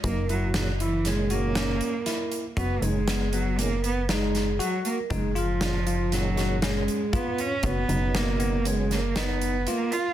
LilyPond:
<<
  \new Staff \with { instrumentName = "Vibraphone" } { \time 5/4 \key fis \major \tempo 4 = 118 ais'8 fis'8 fis'8 e'8 gis'8 ais'2 r8 | b'8 gis'4 fis'8 ais'8 b'8 gis'4 fis'8 ais'8 | gis'8 eis'4. fis'4 gis'4 b'8 cis''8 | b'4 ais'4 gis'8 ais'8 b'4 ais'8 eis''8 | }
  \new Staff \with { instrumentName = "Tine electric piano" } { \time 5/4 \key fis \major dis'8 e'4 e'4 fis'8 cis'4 e'4 | fis'8 dis'8 b8 b4 r8 dis'4 fis'4 | dis'8 eis'4 eis'4 fis'8 cis'4 eis'4 | fis'8 dis'8 b8 b4 r8 dis'4 eis'4 | }
  \new Staff \with { instrumentName = "Cello" } { \time 5/4 \key fis \major ais8 fis8 fis8 e8 gis8 ais2 r8 | b8 gis4 fis8 ais8 b8 gis4 fis8 ais8 | gis8 eis4. fis4 gis4 b8 cis'8 | b4 ais4 gis8 ais8 b4 ais8 eis'8 | }
  \new Staff \with { instrumentName = "Tonewheel organ" } { \clef bass \time 5/4 \key fis \major r4 <ais, dis gis cis'>8 r8 <ais, dis gis cis'>4. r4. | r8 <ais, dis gis cis'>8 r4 <ais, dis gis cis'>8 r2 r8 | r4 <ais, dis gis cis'>8 r8 <ais, dis gis cis'>4. r4. | r8 <b, cis fis dis'>4. <cis fis b cis'>8 r2 r8 | }
  \new Staff \with { instrumentName = "Analog synth bass" } { \clef bass \time 5/4 \key fis \major fis,,1 r4 | fis,,8 fis,,1 r8 | fis,,1 r4 | fis,,8 fis,,1 r8 | }
  \new DrumStaff \with { instrumentName = "Drums" } \drummode { \time 5/4 <hh bd>8 hh8 <hh sn>8 hh8 <hh sn>8 hh8 <hh sn>8 hh8 <hh sn>8 hh8 | <hh bd>8 hh8 <hh sn>8 hh8 hh8 hh8 <hh sn>8 <hh sn>8 hh8 hh8 | <hh bd>8 hh8 <hh sn>8 hh8 <hh sn>8 <hh sn>8 <hh sn>8 hh8 <hh bd>8 hh8 | <hh bd>8 hh8 <hh sn>8 hh8 hh8 <hh sn>8 <hh sn>8 hh8 hh8 hh8 | }
>>